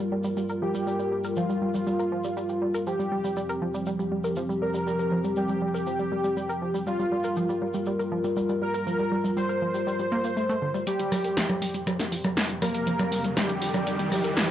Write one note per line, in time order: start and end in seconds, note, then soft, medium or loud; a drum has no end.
0.00 2.83 G3 medium
0.00 2.83 F4 medium
0.00 2.83 A#4 medium
0.12 0.22 G3 medium
0.24 0.31 G3 medium
0.24 shaker medium
0.37 0.43 G3 medium
0.37 shaker medium
0.49 0.59 A#4 medium
0.49 shaker soft
0.62 0.68 F3 medium
0.62 1.27 G4 medium
0.74 0.81 G3 medium
0.74 shaker medium
0.87 0.97 G3 medium
0.87 shaker medium
0.99 1.06 G3 medium
0.99 shaker soft
1.12 1.18 G3 medium
1.24 1.34 A#4 medium
1.24 shaker medium
1.36 1.43 F3 medium
1.36 2.77 F4 loud
1.36 shaker medium
1.49 1.56 G3 medium
1.49 shaker soft
1.62 1.72 G3 medium
1.74 1.81 G3 medium
1.74 shaker medium
1.87 1.93 G3 medium
1.87 shaker medium
1.99 2.09 A#4 medium
1.99 shaker soft
2.12 2.18 F3 medium
2.24 2.31 G3 medium
2.24 shaker medium
2.37 2.47 G3 medium
2.37 shaker medium
2.49 2.56 G3 medium
2.49 shaker soft
2.62 2.68 G3 medium
2.74 2.84 A#4 medium
2.74 shaker medium
2.87 6.83 F3 medium
2.87 2.93 F3 medium
2.87 6.83 C4 medium
2.87 6.83 G4 medium
2.87 3.77 G4 loud
2.87 shaker medium
2.99 3.06 G3 medium
2.99 shaker soft
3.12 3.21 G3 medium
3.24 3.31 G3 medium
3.24 shaker medium
3.37 3.43 G3 medium
3.37 shaker medium
3.49 3.59 A#4 medium
3.49 shaker soft
3.62 3.68 F3 medium
3.74 3.81 G3 medium
3.74 shaker medium
3.86 3.96 G3 medium
3.86 shaker medium
3.99 4.06 G3 medium
3.99 shaker soft
4.12 4.18 G3 medium
4.24 4.34 A#4 medium
4.24 shaker medium
4.36 4.43 F3 medium
4.36 shaker medium
4.49 4.56 G3 medium
4.49 shaker soft
4.62 4.71 G3 medium
4.62 5.27 A#4 medium
4.74 4.81 G3 medium
4.74 shaker medium
4.87 4.93 G3 medium
4.87 shaker medium
4.99 5.09 A#4 medium
4.99 shaker soft
5.12 5.18 F3 medium
5.24 5.31 G3 medium
5.24 shaker medium
5.36 5.47 G3 medium
5.36 6.77 G4 loud
5.36 shaker medium
5.49 5.56 G3 medium
5.49 shaker soft
5.62 5.68 G3 medium
5.74 5.84 A#4 medium
5.74 shaker medium
5.87 5.93 F3 medium
5.87 shaker medium
5.99 6.06 G3 medium
5.99 shaker soft
6.12 6.21 G3 medium
6.24 6.31 G3 medium
6.24 shaker medium
6.37 6.43 G3 medium
6.37 shaker medium
6.49 6.59 A#4 medium
6.49 shaker soft
6.62 6.68 F3 medium
6.74 6.81 G3 medium
6.74 shaker medium
6.87 6.96 G3 medium
6.87 10.83 G3 medium
6.87 10.83 F4 medium
6.87 7.77 F4 loud
6.87 10.83 A#4 medium
6.87 shaker medium
6.99 7.06 G3 medium
6.99 shaker soft
7.12 7.18 G3 medium
7.24 7.34 A#4 medium
7.24 shaker medium
7.36 7.43 F3 medium
7.36 shaker medium
7.49 7.56 G3 medium
7.49 shaker soft
7.62 7.72 G3 medium
7.74 7.81 G3 medium
7.74 shaker medium
7.86 7.93 G3 medium
7.86 shaker medium
7.99 8.09 A#4 medium
7.99 shaker soft
8.12 8.18 F3 medium
8.24 8.31 G3 medium
8.24 shaker medium
8.37 8.46 G3 medium
8.37 shaker medium
8.49 8.56 G3 medium
8.49 shaker soft
8.62 8.68 G3 medium
8.62 9.27 A#4 loud
8.74 8.84 A#4 medium
8.74 shaker medium
8.87 8.93 F3 medium
8.87 shaker medium
8.99 9.06 G3 medium
8.99 shaker soft
9.12 9.22 G3 medium
9.24 9.31 G3 medium
9.24 shaker medium
9.37 9.43 G3 medium
9.37 10.77 C5 loud
9.37 shaker medium
9.49 9.59 A#4 medium
9.49 shaker soft
9.62 9.68 F3 medium
9.74 9.81 G3 medium
9.74 shaker medium
9.87 9.97 G3 medium
9.87 shaker medium
9.99 10.06 G3 medium
9.99 shaker soft
10.12 10.18 A#3 loud
10.24 10.34 A#3 medium
10.24 shaker medium
10.37 10.47 A3 medium
10.37 shaker medium
10.49 10.56 A3 loud
10.49 shaker soft
10.62 10.68 D3 medium
10.74 10.78 G3 medium
10.74 shaker medium
10.87 14.51 F3 medium
10.87 11.77 G3 medium
10.87 10.97 G3 medium
10.87 14.51 C4 medium
10.87 11.77 G4 loud
10.87 14.51 G4 medium
10.87 closed hi-hat medium
10.87 riser medium
10.87 shaker medium
10.99 11.06 G3 medium
10.99 closed hi-hat soft
10.99 shaker soft
11.12 11.18 G3 medium
11.12 cross-stick soft
11.12 open hi-hat loud
11.12 low conga medium
11.24 11.34 A#4 medium
11.24 closed hi-hat soft
11.24 shaker medium
11.37 11.43 F3 medium
11.37 snare loud
11.37 closed hi-hat medium
11.37 shaker medium
11.49 11.56 G3 medium
11.49 cross-stick soft
11.49 closed hi-hat soft
11.49 low conga medium
11.49 shaker soft
11.62 11.71 G3 medium
11.62 open hi-hat loud
11.74 11.81 G3 medium
11.74 closed hi-hat soft
11.74 shaker medium
11.87 11.93 G3 medium
11.87 cross-stick soft
11.87 closed hi-hat medium
11.87 low conga medium
11.87 shaker medium
11.99 12.09 A#4 medium
11.99 snare soft
11.99 closed hi-hat soft
11.99 shaker soft
12.12 12.18 F3 medium
12.12 open hi-hat loud
12.24 12.31 G3 medium
12.24 cross-stick soft
12.24 closed hi-hat soft
12.24 low conga medium
12.24 shaker medium
12.37 12.47 G3 medium
12.37 snare loud
12.37 closed hi-hat medium
12.37 shaker medium
12.49 12.56 G3 medium
12.49 closed hi-hat soft
12.49 shaker soft
12.62 12.68 G3 medium
12.62 13.27 A#3 medium
12.62 13.27 A#4 loud
12.62 cross-stick medium
12.62 open hi-hat loud
12.62 low conga medium
12.74 12.84 A#4 medium
12.74 closed hi-hat medium
12.74 shaker medium
12.87 12.93 F3 medium
12.87 closed hi-hat medium
12.87 shaker medium
12.99 13.06 G3 medium
12.99 cross-stick soft
12.99 closed hi-hat soft
12.99 low conga medium
12.99 shaker soft
13.12 13.22 G3 medium
13.12 open hi-hat loud
13.24 13.31 G3 medium
13.24 closed hi-hat soft
13.24 shaker medium
13.37 13.43 G3 medium
13.37 14.51 G3 medium
13.37 14.51 G4 loud
13.37 cross-stick soft
13.37 snare loud
13.37 closed hi-hat medium
13.37 low conga medium
13.37 shaker medium
13.49 13.59 A#4 medium
13.49 closed hi-hat soft
13.49 shaker soft
13.62 13.68 F3 medium
13.62 open hi-hat loud
13.74 13.81 G3 medium
13.74 cross-stick soft
13.74 closed hi-hat soft
13.74 low conga medium
13.74 shaker medium
13.87 13.97 G3 medium
13.87 closed hi-hat medium
13.87 shaker medium
13.99 14.06 G3 medium
13.99 closed hi-hat soft
13.99 shaker soft
14.12 14.18 G3 medium
14.12 cross-stick soft
14.12 open hi-hat loud
14.12 low conga medium
14.24 14.34 A#4 medium
14.24 closed hi-hat soft
14.24 shaker medium
14.37 14.43 F3 medium
14.37 snare loud
14.37 closed hi-hat medium
14.37 shaker medium